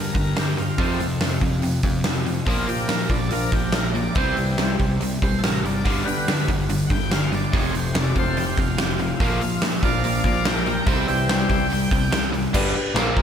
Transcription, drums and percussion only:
0.14 kick, open hi-hat
0.36 snare, open hi-hat
0.58 open hi-hat
0.78 kick, open hi-hat
1.00 open hi-hat
1.20 snare, open hi-hat
1.41 kick, open hi-hat
1.62 open hi-hat
1.83 kick, open hi-hat
2.04 snare, open hi-hat
2.26 open hi-hat
2.47 kick, open hi-hat
2.69 open hi-hat
2.89 snare, open hi-hat
2.99 snare
3.09 kick, open hi-hat
3.31 open hi-hat
3.52 kick, open hi-hat
3.72 snare, open hi-hat
3.95 open hi-hat
4.15 kick, open hi-hat
4.37 open hi-hat
4.58 snare, open hi-hat
4.79 kick, open hi-hat
5.01 open hi-hat
5.22 kick, open hi-hat
5.43 snare, open hi-hat
5.65 open hi-hat
5.85 kick, open hi-hat
6.07 open hi-hat
6.28 snare, open hi-hat
6.48 kick, open hi-hat
6.69 open hi-hat
6.90 kick, open hi-hat
7.11 snare, open hi-hat
7.33 open hi-hat
7.53 kick, open hi-hat
7.75 open hi-hat
7.95 snare, open hi-hat
8.16 kick, open hi-hat
8.37 open hi-hat
8.57 kick, open hi-hat
8.78 snare, open hi-hat
8.99 open hi-hat
9.20 kick, open hi-hat
9.41 open hi-hat
9.62 snare, open hi-hat
9.73 snare
9.83 kick, open hi-hat
10.04 open hi-hat
10.24 kick, open hi-hat
10.45 snare, open hi-hat
10.66 open hi-hat
10.86 kick, open hi-hat
11.08 open hi-hat
11.29 snare, open hi-hat
11.50 kick, open hi-hat
11.70 open hi-hat
11.91 kick, open hi-hat
12.12 snare, open hi-hat
12.34 open hi-hat
12.54 kick, crash
12.96 snare, crash
13.17 kick

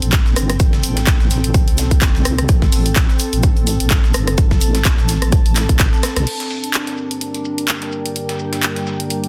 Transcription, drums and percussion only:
0.02 closed hi-hat, shaker
0.12 kick, snare, clap, closed hi-hat, shaker
0.26 snare, shaker
0.36 cross-stick, open hi-hat, shaker
0.49 cross-stick, closed hi-hat, shaker
0.60 kick, closed hi-hat, shaker
0.73 snare, shaker
0.83 open hi-hat, shaker
0.96 snare, closed hi-hat, shaker
1.07 kick, snare, clap, closed hi-hat, shaker
1.20 snare, shaker
1.31 snare, open hi-hat, shaker
1.44 closed hi-hat, shaker
1.54 kick, closed hi-hat, shaker
1.67 open hi-hat, shaker
1.78 snare, open hi-hat, shaker
1.91 kick, closed hi-hat, shaker
2.02 kick, snare, clap, closed hi-hat, shaker
2.15 snare, shaker
2.25 cross-stick, open hi-hat, shaker
2.38 cross-stick, closed hi-hat, shaker
2.49 kick, closed hi-hat, shaker
2.62 kick, snare, shaker
2.72 open hi-hat, shaker
2.86 closed hi-hat, shaker
2.95 kick, snare, clap, closed hi-hat, shaker
3.09 snare, shaker
3.19 open hi-hat, shaker
3.33 closed hi-hat, shaker
3.43 kick, closed hi-hat, shaker
3.56 closed hi-hat, shaker
3.67 open hi-hat, shaker
3.80 closed hi-hat, shaker
3.90 kick, snare, clap, closed hi-hat, shaker
4.04 snare, shaker
4.14 cross-stick, open hi-hat, shaker
4.27 cross-stick, closed hi-hat, shaker
4.38 kick, closed hi-hat, shaker
4.51 kick, snare, shaker
4.61 open hi-hat, shaker
4.75 snare, closed hi-hat, shaker
4.85 kick, snare, clap, closed hi-hat, shaker
4.98 snare, shaker
5.09 snare, open hi-hat, shaker
5.22 cross-stick, closed hi-hat, shaker
5.32 kick, closed hi-hat, shaker
5.46 open hi-hat, shaker
5.56 snare, clap, open hi-hat, shaker
5.69 kick, closed hi-hat, shaker
5.79 kick, snare, clap, closed hi-hat, shaker
5.93 snare, shaker
6.03 cross-stick, snare, open hi-hat, shaker
6.16 cross-stick, snare, closed hi-hat, shaker
6.27 closed hi-hat, crash, shaker
6.40 snare, closed hi-hat
6.50 open hi-hat
6.64 closed hi-hat
6.74 clap, closed hi-hat, shaker
6.87 snare, closed hi-hat
6.98 shaker
7.11 closed hi-hat
7.21 closed hi-hat, shaker
7.34 closed hi-hat
7.45 shaker
7.58 closed hi-hat
7.68 clap, closed hi-hat
7.82 snare, closed hi-hat
7.92 shaker
8.06 closed hi-hat
8.16 closed hi-hat, shaker
8.29 snare, closed hi-hat
8.39 shaker
8.53 snare, closed hi-hat
8.63 clap, closed hi-hat, shaker
8.76 snare, closed hi-hat
8.87 snare, shaker
9.00 closed hi-hat
9.10 closed hi-hat, shaker
9.24 closed hi-hat

